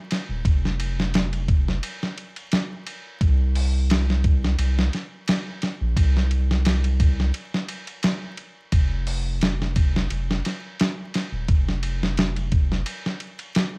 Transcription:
0.11 snare medium
0.11 ride medium
0.29 0.43 D#1 medium
0.45 1.80 F1 medium
0.45 kick loud
0.45 ride medium
0.65 snare soft
0.80 ride medium
1.00 snare medium
1.14 snare loud
1.14 ride medium
1.33 ride soft
1.48 kick loud
1.48 ride medium
1.68 snare soft
1.83 ride medium
2.03 snare soft
2.18 ride medium
2.36 ride soft
2.52 snare loud
2.52 ride medium
2.86 ride medium
3.21 4.56 C2 loud
3.21 kick loud
3.21 ride medium
3.55 open hi-hat medium
3.90 snare loud
3.90 ride medium
4.10 snare soft
4.24 kick loud
4.24 ride medium
4.44 snare medium
4.59 4.89 C2 medium
4.59 ride medium
4.79 snare medium
4.93 snare soft
4.93 ride medium
5.28 snare loud
5.28 ride medium
5.62 snare medium
5.62 ride medium
5.81 5.95 A#1 medium
5.96 7.31 C2 medium
5.96 kick loud
5.96 ride medium
6.17 snare soft
6.31 ride medium
6.51 snare medium
6.65 snare loud
6.65 ride medium
6.84 ride soft
7.00 kick loud
7.00 ride medium
7.20 snare soft
7.34 ride medium
7.54 snare medium
7.69 ride medium
7.87 ride soft
8.03 snare loud
8.03 ride medium
8.38 ride medium
8.72 10.07 F1 medium
8.72 kick loud
8.72 ride medium
9.07 open hi-hat medium
9.41 snare loud
9.41 ride medium
9.62 snare soft
9.76 kick loud
9.76 ride medium
9.96 snare medium
10.10 10.41 F1 medium
10.10 ride medium
10.31 snare medium
10.45 snare soft
10.45 ride medium
10.79 snare loud
10.79 ride loud
11.14 snare medium
11.14 ride medium
11.32 11.46 D#1 medium
11.48 12.83 F1 medium
11.48 kick loud
11.48 ride medium
11.69 snare soft
11.83 ride medium
12.03 snare medium
12.17 snare loud
12.17 ride medium
12.36 ride soft
12.52 kick loud
12.52 ride medium
12.72 snare soft
12.86 ride medium
13.06 snare medium
13.20 ride medium
13.39 ride soft
13.55 snare loud
13.55 ride medium

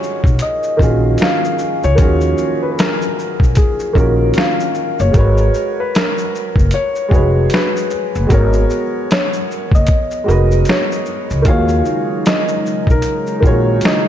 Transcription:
0.00 0.77 D#3 medium
0.00 0.78 A#3 medium
0.00 0.80 C#4 medium
0.00 0.81 F4 medium
0.00 0.83 F#4 medium
0.00 0.84 G#4 medium
0.00 0.44 C#5 medium
0.00 shaker soft
0.24 0.38 B1 medium
0.24 kick medium
0.24 shaker soft
0.39 1.23 D#5 medium
0.39 closed hi-hat medium
0.39 shaker medium
0.63 shaker soft
0.77 1.14 A#1 medium
0.77 1.56 D#3 medium
0.77 1.56 A#3 medium
0.77 1.57 C#4 medium
0.77 kick medium
0.81 1.58 F4 medium
0.81 1.59 F#4 medium
0.81 1.59 G#4 medium
0.81 shaker soft
1.18 1.80 F5 medium
1.18 closed hi-hat medium
1.18 shaker medium
1.22 snare loud
1.45 shaker medium
1.59 shaker soft
1.83 1.99 C#2 medium
1.83 2.65 C#5 loud
1.83 shaker soft
1.95 2.32 D#2 loud
1.95 3.03 D#3 medium
1.95 3.03 A#3 medium
1.95 3.04 C#4 medium
1.95 3.05 F4 medium
1.95 kick loud
1.95 closed hi-hat medium
1.95 shaker medium
2.01 3.06 F#4 medium
2.01 3.06 G#4 medium
2.21 shaker soft
2.38 shaker medium
2.63 2.70 B4 medium
2.71 2.77 B4 medium
2.78 3.59 A#4 medium
2.78 snare loud
2.78 closed hi-hat medium
2.78 shaker medium
3.02 shaker soft
3.19 shaker soft
3.40 3.54 B1 medium
3.40 kick medium
3.40 shaker soft
3.55 4.38 G#4 medium
3.55 kick medium
3.55 closed hi-hat medium
3.55 shaker medium
3.80 shaker soft
3.93 4.30 A#1 medium
3.93 4.72 D#3 medium
3.93 4.72 A#3 medium
3.93 4.73 C#4 medium
3.93 4.74 F4 medium
3.93 kick medium
3.98 4.75 F#4 medium
3.98 4.75 A#4 medium
3.98 shaker soft
4.34 5.01 F5 medium
4.34 closed hi-hat medium
4.34 shaker medium
4.38 snare loud
4.60 shaker medium
4.75 shaker soft
4.99 5.13 F#1 loud
4.99 5.81 C#5 medium
4.99 shaker soft
5.11 5.48 G#1 loud
5.11 6.19 G#3 medium
5.11 6.20 F#4 medium
5.11 6.21 A#4 medium
5.11 kick loud
5.11 closed hi-hat medium
5.11 shaker medium
5.17 6.22 B4 medium
5.17 6.22 C#5 medium
5.38 shaker soft
5.54 shaker soft
5.80 5.95 B4 medium
5.95 6.75 A#4 medium
5.95 snare loud
5.95 closed hi-hat medium
5.95 shaker medium
6.18 shaker soft
6.35 shaker soft
6.56 6.70 F#1 medium
6.56 kick medium
6.56 shaker soft
6.71 7.54 C#5 medium
6.71 closed hi-hat medium
6.71 shaker medium
6.95 shaker soft
7.08 7.45 F1 medium
7.08 7.87 G#3 medium
7.08 7.88 F#4 medium
7.08 7.89 G#4 medium
7.08 kick medium
7.13 7.90 B4 medium
7.13 7.91 C#5 medium
7.13 shaker soft
7.50 8.27 B4 medium
7.50 closed hi-hat medium
7.50 shaker medium
7.54 snare loud
7.76 shaker medium
7.90 shaker soft
8.15 8.28 F#1 medium
8.15 shaker soft
8.27 8.64 G#1 loud
8.27 9.34 G#3 medium
8.27 9.35 F#4 medium
8.27 9.36 A#4 medium
8.27 kick loud
8.27 closed hi-hat medium
8.27 shaker medium
8.32 9.37 B3 medium
8.32 9.06 A#4 medium
8.32 9.38 C#5 medium
8.53 shaker soft
8.70 shaker soft
9.11 9.70 C#5 medium
9.11 snare loud
9.11 closed hi-hat medium
9.11 shaker medium
9.33 shaker soft
9.51 shaker soft
9.71 9.85 F#1 medium
9.71 10.71 D#5 medium
9.71 kick medium
9.71 shaker soft
9.87 kick medium
9.87 closed hi-hat medium
9.87 shaker medium
10.11 shaker soft
10.24 11.03 G#3 medium
10.24 11.04 F#4 medium
10.24 11.05 A#4 medium
10.28 10.62 F1 medium
10.28 11.06 B4 medium
10.28 11.07 D#5 medium
10.28 shaker soft
10.51 shaker soft
10.65 closed hi-hat medium
10.65 shaker medium
10.69 11.49 C#5 medium
10.69 snare loud
10.92 shaker soft
11.06 shaker soft
11.30 11.44 C#2 medium
11.30 shaker soft
11.42 11.80 D#2 loud
11.42 14.08 C#3 medium
11.42 12.50 D#3 medium
11.42 14.08 F#3 medium
11.42 12.51 A#3 medium
11.42 14.08 D#4 medium
11.42 12.51 F4 medium
11.42 kick loud
11.42 closed hi-hat medium
11.42 shaker medium
11.46 14.08 G#3 medium
11.46 12.52 F#4 medium
11.46 12.53 G#4 medium
11.46 12.54 C#5 medium
11.46 12.28 F5 loud
11.68 shaker soft
11.85 shaker soft
12.26 12.91 D#5 medium
12.26 snare loud
12.26 closed hi-hat medium
12.26 shaker medium
12.48 shaker soft
12.66 shaker soft
12.87 13.01 B1 medium
12.87 13.80 A#4 loud
12.87 kick medium
12.87 shaker soft
13.02 closed hi-hat medium
13.02 shaker medium
13.27 shaker soft
13.40 13.77 A#1 medium
13.40 14.08 D#3 medium
13.40 14.08 A#3 medium
13.40 14.08 F4 medium
13.40 kick medium
13.44 14.08 F#4 medium
13.44 14.08 G#4 medium
13.44 14.08 C#5 medium
13.44 shaker soft
13.81 closed hi-hat medium
13.81 shaker medium
13.85 14.08 D#5 medium
13.85 snare loud

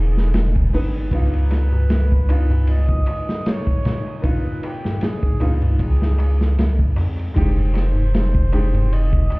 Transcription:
0.00 0.33 E1 medium
0.00 1.14 G#3 medium
0.00 9.39 G#3 medium
0.00 0.73 B3 medium
0.00 0.74 D#4 medium
0.00 9.39 D#4 medium
0.00 0.31 G#4 medium
0.00 1.14 G#4 medium
0.17 snare soft
0.34 0.69 E1 loud
0.34 snare loud
0.34 ride medium
0.56 kick loud
0.73 1.08 G#1 medium
0.73 1.08 B3 medium
0.73 1.08 D#4 medium
0.73 1.09 B4 medium
0.73 open hi-hat medium
0.95 ride soft
1.11 3.03 C#2 loud
1.11 2.25 B3 medium
1.11 2.25 D#4 medium
1.11 2.26 F4 medium
1.11 2.65 B4 loud
1.11 kick loud
1.11 ride medium
1.11 darbuka tek soft
1.33 ride soft
1.51 snare soft
1.51 ride medium
1.51 darbuka tek medium
1.72 darbuka tek medium
1.72 darbuka dum medium
1.89 snare loud
1.89 ride medium
1.89 darbuka tek soft
2.12 kick medium
2.29 2.41 B3 medium
2.29 2.41 D#4 medium
2.29 2.41 F4 medium
2.29 ride medium
2.29 darbuka tek loud
2.50 ride soft
2.50 darbuka tek medium
2.50 darbuka dum medium
2.67 3.49 D#5 loud
2.67 ride medium
2.67 darbuka tek soft
2.89 kick medium
3.06 ride medium
3.06 darbuka tek loud
3.29 snare medium
3.29 darbuka tek medium
3.46 4.18 C#5 loud
3.46 snare loud
3.46 ride loud
3.46 darbuka tek soft
3.67 kick medium
3.85 5.37 A#2 medium
3.85 snare medium
3.85 ride medium
3.85 darbuka tek medium
4.07 darbuka tek medium
4.19 5.36 B4 medium
4.19 4.26 C#5 medium
4.23 5.36 D#4 medium
4.23 5.37 F4 medium
4.23 4.67 B4 loud
4.23 kick loud
4.23 ride medium
4.23 darbuka tek soft
4.63 5.05 G4 medium
4.63 ride medium
4.63 darbuka tek medium
4.84 snare soft
4.84 darbuka tek medium
4.84 darbuka dum medium
5.01 5.55 G#4 loud
5.01 snare loud
5.01 ride medium
5.01 darbuka tek soft
5.23 kick loud
5.40 6.57 C#2 medium
5.40 5.52 B3 medium
5.40 5.53 D#4 medium
5.40 5.53 F4 medium
5.40 ride medium
5.40 darbuka tek medium
5.62 ride soft
5.62 darbuka tek medium
5.62 darbuka dum medium
5.79 6.54 G#4 medium
5.79 kick loud
5.79 ride medium
5.79 darbuka tek soft
6.02 snare medium
6.18 ride medium
6.18 darbuka tek medium
6.40 snare medium
6.40 darbuka tek medium
6.58 6.93 C#2 loud
6.58 snare loud
6.58 ride medium
6.58 darbuka tek soft
6.79 kick loud
6.96 7.31 F2 loud
6.96 open hi-hat medium
6.96 darbuka tek medium
7.17 ride soft
7.17 darbuka tek medium
7.34 9.28 F1 loud
7.34 8.47 G#3 medium
7.34 8.48 D#4 medium
7.34 8.49 G4 loud
7.34 8.95 C5 loud
7.34 kick loud
7.34 ride medium
7.34 darbuka tek soft
7.59 ride soft
7.74 snare soft
7.74 ride medium
7.74 darbuka tek medium
7.94 darbuka tek soft
7.94 darbuka dum medium
8.14 snare loud
8.14 ride medium
8.14 darbuka tek soft
8.35 kick loud
8.52 8.64 G#3 medium
8.52 8.64 D#4 medium
8.52 8.65 G4 medium
8.52 ride medium
8.52 darbuka tek medium
8.74 ride soft
8.74 darbuka tek medium
8.74 darbuka dum medium
8.91 9.39 D#5 loud
8.91 ride medium
8.91 darbuka tek soft
9.13 kick loud
9.30 ride medium
9.30 darbuka tek medium

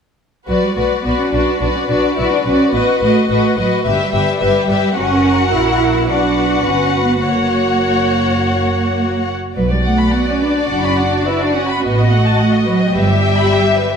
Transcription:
0.47 0.56 B1 soft
0.47 0.61 F#3 medium
0.47 0.75 F#4 soft
0.47 0.75 B4 soft
0.47 0.76 D5 soft
0.62 0.68 G3 soft
0.75 0.84 B1 soft
0.75 0.83 A3 soft
0.75 1.04 F#4 soft
0.75 1.04 B4 soft
0.75 1.04 D5 soft
1.03 1.13 B1 soft
1.03 1.18 B3 medium
1.03 1.32 F#4 soft
1.03 1.31 B4 soft
1.03 1.31 D5 soft
1.19 1.33 C#4 soft
1.32 1.41 B1 soft
1.32 1.59 D4 medium
1.32 1.61 F#4 soft
1.32 1.60 B4 soft
1.32 1.60 D5 soft
1.60 1.69 B1 soft
1.60 1.66 D4 medium
1.60 1.89 F#4 soft
1.60 1.87 B4 soft
1.60 1.89 D5 soft
1.75 1.80 C#4 soft
1.88 1.98 B1 soft
1.88 2.16 D4 medium
1.88 2.17 F#4 soft
1.88 2.16 B4 soft
1.88 2.17 D5 soft
2.17 2.26 B1 soft
2.17 2.31 E4 medium
2.17 2.46 F#4 soft
2.17 2.43 B4 soft
2.17 2.46 D5 soft
2.32 2.46 D4 medium
2.44 2.54 B1 soft
2.44 2.73 C#4 medium
2.44 2.73 F#4 soft
2.44 2.70 B4 soft
2.44 2.74 D5 soft
2.71 2.82 A1 soft
2.71 2.81 B3 medium
2.71 3.01 F#4 soft
2.71 2.99 B4 soft
2.71 3.00 D#5 soft
3.00 3.10 A1 soft
3.00 3.27 A3 medium
3.00 3.30 F#4 soft
3.00 3.28 B4 soft
3.00 3.28 D#5 soft
3.29 3.38 A1 soft
3.29 3.57 A3 medium
3.29 3.58 F#4 soft
3.29 3.56 B4 soft
3.29 3.56 D#5 soft
3.57 3.66 A1 soft
3.57 3.65 F#3 medium
3.57 3.86 F#4 soft
3.57 3.83 B4 soft
3.57 3.85 D#5 soft
3.84 3.94 G1 soft
3.84 4.95 G3 medium
3.84 4.13 G4 soft
3.84 4.11 B4 soft
3.84 4.12 E5 soft
4.12 4.22 G1 soft
4.12 4.40 G4 soft
4.12 4.39 B4 soft
4.12 4.39 E5 soft
4.40 4.51 G1 soft
4.40 4.68 G4 soft
4.40 4.68 B4 soft
4.40 4.67 E5 soft
4.68 4.77 G1 soft
4.68 4.97 G4 soft
4.68 4.96 B4 soft
4.68 4.96 E5 soft
4.95 5.49 F#1 soft
4.95 5.51 C#4 medium
4.95 6.05 F#4 soft
4.95 6.04 A#4 soft
4.95 6.05 F#5 soft
5.52 6.09 A#1 soft
5.52 6.08 E4 medium
6.08 6.66 B1 soft
6.08 6.66 D4 medium
6.08 7.21 F#4 soft
6.08 7.23 B4 soft
6.08 7.21 F#5 soft
6.65 7.22 G1 soft
6.65 7.04 C#4 medium
7.05 7.23 B3 soft
7.22 9.36 F#1 soft
7.22 9.23 A#3 medium
7.22 9.31 F#4 soft
7.22 9.36 C#5 soft
7.22 9.31 F#5 soft
9.56 10.04 B1 soft
9.56 9.62 F#3 medium
9.56 12.92 F#4 soft
9.56 9.70 B4 soft
9.56 11.79 D5 soft
9.70 9.77 G3 soft
9.70 9.85 D5 soft
9.85 10.13 A3 medium
9.85 9.99 F#5 soft
9.98 10.13 B5 soft
10.12 10.27 B3 medium
10.12 10.27 F#5 soft
10.27 10.42 C#4 soft
10.27 10.41 D5 soft
10.41 10.69 D4 medium
10.41 10.56 B4 soft
10.56 10.70 D5 soft
10.69 11.16 F#1 soft
10.69 10.84 D4 medium
10.69 10.82 F#5 soft
10.83 10.99 C#4 medium
10.83 10.98 B5 soft
10.97 11.27 D4 medium
10.97 11.12 F#5 soft
11.12 11.26 D5 soft
11.27 11.41 E4 medium
11.27 11.41 B4 soft
11.41 11.55 D4 medium
11.41 11.55 D5 soft
11.54 11.83 C#4 medium
11.54 11.69 F#5 soft
11.69 11.83 B5 soft
11.82 12.30 A1 medium
11.82 12.11 B3 medium
11.82 11.96 B4 soft
11.82 12.93 D#5 soft
11.98 12.11 D#5 soft
12.10 12.37 A3 medium
12.10 12.25 F#5 soft
12.25 12.39 A5 soft
12.38 12.66 A3 medium
12.38 12.53 F#5 soft
12.54 12.68 D#5 soft
12.67 12.95 F#3 medium
12.67 12.81 B4 soft
12.79 12.94 D#5 soft
12.94 13.41 G1 medium
12.94 13.96 G3 medium
12.94 13.96 G4 medium
12.94 13.08 B4 soft
12.94 13.96 E5 medium
13.08 13.22 E5 soft
13.22 13.36 G5 soft
13.37 13.50 B5 soft
13.51 13.64 G5 soft
13.65 13.78 E5 soft
13.76 13.91 B4 soft
13.92 13.96 E5 soft

